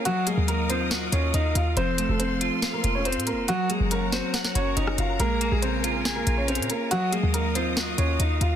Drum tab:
HH |x-----x-----x-----x-----x-----x-----x-----x-----|x-----x-----x-----x-----x-----x-----x-x-x-x-----|x-----x-----x-----x-----x-----x-----x-----x-----|x-----x-----x-----x-----x-----x-----x-x-x-x-----|
SD |------------------------o-----------------------|------------------------o-----------------------|------------------o-----o--o-----------r--------|------------------------o-----------------------|

HH |x-----x-----x-----x-----x-----x-----x-----x-----|
SD |------------------------o-----------------------|